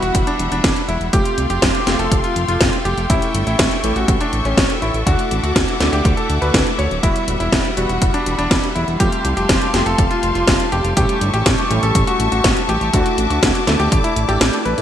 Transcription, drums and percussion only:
0.03 closed hi-hat soft
0.15 kick loud
0.15 closed hi-hat medium
0.27 closed hi-hat soft
0.39 closed hi-hat medium
0.52 closed hi-hat soft
0.64 kick loud
0.64 snare loud
0.64 closed hi-hat medium
0.76 closed hi-hat soft
0.89 closed hi-hat soft
1.01 closed hi-hat soft
1.13 kick loud
1.13 closed hi-hat medium
1.25 closed hi-hat soft
1.38 closed hi-hat medium
1.50 closed hi-hat soft
1.62 kick loud
1.62 snare loud
1.62 closed hi-hat medium
1.75 closed hi-hat soft
1.87 snare medium
1.87 closed hi-hat medium
1.99 closed hi-hat soft
2.12 kick loud
2.12 closed hi-hat medium
2.24 closed hi-hat soft
2.36 closed hi-hat medium
2.48 closed hi-hat soft
2.61 kick loud
2.61 snare loud
2.61 closed hi-hat medium
2.73 closed hi-hat soft
2.85 closed hi-hat soft
2.98 closed hi-hat soft
3.10 kick loud
3.10 closed hi-hat medium
3.22 closed hi-hat soft
3.34 closed hi-hat medium
3.47 closed hi-hat soft
3.59 kick loud
3.59 snare loud
3.59 closed hi-hat medium
3.71 closed hi-hat soft
3.84 closed hi-hat medium
3.96 closed hi-hat soft
4.08 kick loud
4.08 closed hi-hat medium
4.21 closed hi-hat soft
4.33 closed hi-hat medium
4.45 closed hi-hat soft
4.57 kick loud
4.57 snare loud
4.57 closed hi-hat medium
4.70 closed hi-hat soft
4.82 closed hi-hat soft
4.94 closed hi-hat soft
5.07 kick loud
5.07 closed hi-hat medium
5.19 closed hi-hat soft
5.31 closed hi-hat medium
5.44 closed hi-hat soft
5.56 kick loud
5.56 snare loud
5.56 closed hi-hat medium
5.68 closed hi-hat soft
5.80 snare medium
5.80 closed hi-hat medium
5.93 closed hi-hat soft
6.05 kick loud
6.05 closed hi-hat medium
6.17 closed hi-hat soft
6.30 closed hi-hat medium
6.42 closed hi-hat soft
6.54 kick loud
6.54 snare loud
6.54 closed hi-hat medium
6.67 closed hi-hat soft
6.79 closed hi-hat soft
6.91 closed hi-hat soft
7.03 kick loud
7.03 closed hi-hat medium
7.16 closed hi-hat soft
7.28 closed hi-hat medium
7.40 closed hi-hat soft
7.52 kick loud
7.52 snare loud
7.52 closed hi-hat medium
7.65 closed hi-hat soft
7.77 closed hi-hat medium
7.89 closed hi-hat soft
8.02 kick loud
8.02 closed hi-hat medium
8.14 closed hi-hat soft
8.26 closed hi-hat medium
8.39 closed hi-hat soft
8.51 kick loud
8.51 snare loud
8.51 closed hi-hat medium
8.63 closed hi-hat soft
8.76 closed hi-hat soft
8.88 closed hi-hat soft
9.00 kick loud
9.00 closed hi-hat medium
9.12 closed hi-hat soft
9.25 closed hi-hat medium
9.37 closed hi-hat soft
9.49 kick loud
9.49 snare loud
9.49 closed hi-hat medium
9.62 closed hi-hat soft
9.74 snare medium
9.74 closed hi-hat medium
9.86 closed hi-hat soft
9.98 kick loud
9.98 closed hi-hat medium
10.11 closed hi-hat soft
10.23 closed hi-hat medium
10.35 closed hi-hat soft
10.47 kick loud
10.47 snare loud
10.47 closed hi-hat medium
10.60 closed hi-hat soft
10.72 closed hi-hat soft
10.84 closed hi-hat soft
10.97 kick loud
10.97 closed hi-hat medium
11.09 closed hi-hat soft
11.21 closed hi-hat medium
11.34 closed hi-hat soft
11.46 kick loud
11.46 snare loud
11.46 closed hi-hat medium
11.58 closed hi-hat soft
11.71 closed hi-hat medium
11.83 closed hi-hat soft
11.95 kick loud
11.95 closed hi-hat loud
12.07 closed hi-hat soft
12.20 closed hi-hat medium
12.32 closed hi-hat soft
12.44 kick loud
12.44 snare loud
12.44 closed hi-hat medium
12.57 closed hi-hat soft
12.69 closed hi-hat soft
12.81 closed hi-hat soft
12.93 kick loud
12.93 closed hi-hat medium
13.06 closed hi-hat soft
13.18 closed hi-hat medium
13.30 closed hi-hat soft
13.43 kick loud
13.43 snare loud
13.43 closed hi-hat loud
13.55 closed hi-hat soft
13.67 snare medium
13.67 closed hi-hat medium
13.80 closed hi-hat soft
13.92 kick loud
13.92 closed hi-hat medium
14.04 closed hi-hat soft
14.16 closed hi-hat medium
14.29 closed hi-hat soft
14.41 snare loud
14.41 closed hi-hat medium
14.53 closed hi-hat soft
14.66 closed hi-hat soft
14.78 closed hi-hat soft

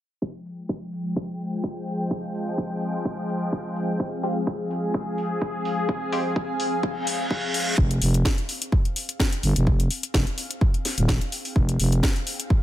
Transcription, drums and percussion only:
0.22 kick loud
0.46 open hi-hat loud
0.69 kick loud
0.93 open hi-hat loud
1.16 kick loud
1.40 open hi-hat loud
1.64 kick loud
1.87 open hi-hat loud
2.11 kick loud
2.35 open hi-hat loud
2.58 kick loud
2.82 open hi-hat loud
3.05 kick loud
3.29 open hi-hat loud
3.53 kick loud
3.76 open hi-hat loud
4.00 kick loud
4.24 open hi-hat loud
4.47 kick loud
4.71 open hi-hat loud
4.94 kick loud
5.18 open hi-hat loud
5.42 kick loud
5.65 open hi-hat loud
5.89 kick loud
6.12 open hi-hat loud
6.36 kick loud
6.60 open hi-hat loud
6.83 kick loud
7.07 open hi-hat loud
7.31 kick loud
7.54 open hi-hat loud
7.78 kick loud
7.91 closed hi-hat medium
8.02 open hi-hat loud
8.14 closed hi-hat medium
8.25 kick loud
8.25 snare loud
8.38 closed hi-hat soft
8.49 open hi-hat loud
8.62 closed hi-hat medium
8.72 kick loud
8.85 closed hi-hat soft
8.96 open hi-hat loud
9.09 closed hi-hat medium
9.20 kick loud
9.20 snare loud
9.33 closed hi-hat medium
9.43 open hi-hat loud
9.56 closed hi-hat medium
9.67 kick loud
9.80 closed hi-hat medium
9.91 open hi-hat loud
10.03 closed hi-hat medium
10.14 kick loud
10.14 snare loud
10.27 closed hi-hat soft
10.38 open hi-hat loud
10.51 closed hi-hat medium
10.61 kick loud
10.74 closed hi-hat soft
10.85 snare soft
10.85 open hi-hat loud
10.98 closed hi-hat medium
11.09 kick loud
11.09 snare loud
11.21 closed hi-hat soft
11.32 open hi-hat loud
11.45 open hi-hat medium
11.56 kick loud
11.69 closed hi-hat medium
11.80 open hi-hat loud
11.92 closed hi-hat medium
12.03 kick loud
12.03 snare loud
12.16 closed hi-hat soft
12.27 open hi-hat loud
12.40 closed hi-hat medium
12.50 kick loud

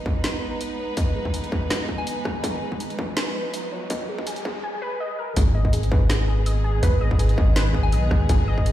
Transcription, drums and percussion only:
0.06 kick loud
0.24 snare loud
0.24 closed hi-hat medium
0.61 closed hi-hat medium
0.97 kick loud
0.97 closed hi-hat medium
1.25 kick medium
1.34 closed hi-hat medium
1.44 closed hi-hat soft
1.52 kick loud
1.70 snare loud
1.70 closed hi-hat medium
1.89 kick medium
1.89 cross-stick soft
2.07 closed hi-hat medium
2.25 kick loud
2.25 cross-stick medium
2.44 kick loud
2.44 closed hi-hat medium
2.72 kick medium
2.80 closed hi-hat medium
2.90 closed hi-hat soft
2.99 kick loud
3.17 snare loud
3.17 closed hi-hat medium
3.54 closed hi-hat medium
3.90 kick loud
3.90 closed hi-hat medium
4.18 kick medium
4.27 closed hi-hat medium
4.36 closed hi-hat soft
4.45 kick loud
5.36 kick loud
5.36 closed hi-hat medium
5.65 kick medium
5.73 closed hi-hat medium
5.83 closed hi-hat soft
5.92 kick loud
6.10 snare loud
6.10 closed hi-hat medium
6.46 closed hi-hat medium
6.83 kick loud
6.83 closed hi-hat medium
7.11 kick medium
7.19 closed hi-hat medium
7.29 closed hi-hat soft
7.38 kick loud
7.56 snare loud
7.56 closed hi-hat medium
7.74 kick medium
7.74 cross-stick soft
7.92 closed hi-hat medium
8.11 kick loud
8.11 cross-stick medium
8.29 kick loud
8.29 closed hi-hat medium
8.58 kick medium
8.66 closed hi-hat medium

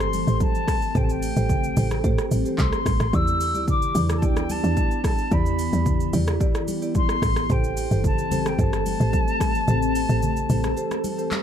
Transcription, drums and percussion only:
0.00 cross-stick loud
0.00 shaker soft
0.13 open hi-hat medium
0.13 high conga medium
0.13 shaker loud
0.28 shaker soft
0.40 kick loud
0.40 high conga medium
0.40 shaker medium
0.55 shaker soft
0.68 kick loud
0.68 cross-stick loud
0.68 open hi-hat medium
0.68 high conga medium
0.68 shaker medium
0.82 shaker medium
0.95 kick loud
0.95 low conga medium
0.95 shaker medium
1.09 shaker medium
1.22 open hi-hat medium
1.22 shaker medium
1.36 high conga medium
1.36 shaker medium
1.49 kick medium
1.49 low conga medium
1.49 shaker medium
1.64 shaker medium
1.77 open hi-hat medium
1.77 high conga medium
1.77 low conga medium
1.77 shaker loud
1.91 cross-stick loud
1.91 shaker medium
2.04 kick loud
2.04 shaker medium
2.18 cross-stick loud
2.18 shaker soft
2.31 open hi-hat medium
2.31 high conga medium
2.31 shaker loud
2.46 shaker soft
2.58 kick loud
2.58 clap medium
2.58 high conga medium
2.58 shaker medium
2.73 cross-stick loud
2.73 shaker soft
2.86 kick loud
2.86 cross-stick loud
2.86 open hi-hat medium
2.86 high conga medium
2.86 shaker medium
3.00 cross-stick loud
3.00 shaker medium
3.13 kick loud
3.13 low conga medium
3.13 shaker medium
3.28 shaker medium
3.41 open hi-hat medium
3.41 shaker loud
3.55 high conga medium
3.55 shaker medium
3.68 kick medium
3.68 low conga medium
3.68 shaker medium
3.82 shaker medium
3.95 open hi-hat medium
3.95 high conga medium
3.95 low conga medium
3.95 shaker loud
4.09 cross-stick loud
4.09 shaker medium
4.22 kick loud
4.22 shaker medium
4.37 cross-stick loud
4.37 shaker medium
4.50 open hi-hat medium
4.50 high conga medium
4.50 shaker loud
4.64 shaker soft
4.77 kick loud
4.77 high conga medium
4.77 shaker medium
4.91 shaker soft
5.04 kick loud
5.04 cross-stick loud
5.04 open hi-hat medium
5.04 high conga medium
5.04 shaker medium
5.18 shaker medium
5.31 kick loud
5.31 low conga medium
5.31 shaker medium
5.46 shaker medium
5.59 open hi-hat medium
5.59 shaker loud
5.73 high conga medium
5.73 shaker medium
5.86 kick medium
5.86 low conga medium
5.86 shaker medium
6.00 shaker medium
6.13 open hi-hat medium
6.13 high conga medium
6.13 low conga medium
6.13 shaker medium
6.27 cross-stick loud
6.27 shaker medium
6.41 kick loud
6.41 shaker medium
6.55 cross-stick loud
6.55 shaker soft
6.68 open hi-hat medium
6.68 high conga medium
6.68 shaker loud
6.82 shaker soft
6.95 kick loud
6.95 high conga medium
6.95 shaker medium
7.09 cross-stick loud
7.09 shaker soft
7.22 kick medium
7.22 cross-stick loud
7.22 open hi-hat medium
7.22 high conga medium
7.22 shaker medium
7.36 cross-stick loud
7.36 shaker medium
7.50 kick loud
7.50 low conga medium
7.50 shaker medium
7.64 shaker medium
7.77 open hi-hat medium
7.77 shaker medium
7.91 high conga medium
7.91 shaker medium
8.04 kick medium
8.04 low conga medium
8.04 shaker medium
8.18 shaker medium
8.32 open hi-hat medium
8.32 high conga medium
8.32 low conga medium
8.32 shaker loud
8.46 cross-stick loud
8.46 shaker medium
8.59 kick loud
8.59 shaker medium
8.73 cross-stick loud
8.73 shaker medium
8.86 open hi-hat medium
8.86 high conga medium
8.86 shaker loud
9.00 shaker medium
9.13 kick loud
9.13 high conga medium
9.13 shaker medium
9.28 shaker soft
9.40 kick loud
9.40 cross-stick loud
9.40 open hi-hat medium
9.40 high conga medium
9.40 shaker medium
9.55 shaker medium
9.68 low conga medium
9.68 shaker medium
9.82 shaker medium
9.95 open hi-hat medium
9.95 shaker medium
10.09 high conga medium
10.09 shaker medium
10.22 low conga medium
10.22 shaker medium
10.37 shaker medium
10.50 open hi-hat medium
10.50 high conga medium
10.50 low conga medium
10.50 shaker loud
10.64 cross-stick loud
10.64 shaker medium
10.77 shaker medium
10.91 cross-stick loud
10.91 shaker medium
11.04 open hi-hat medium
11.04 high conga medium
11.04 shaker loud
11.19 shaker soft
11.31 clap loud
11.31 high conga medium
11.31 shaker medium

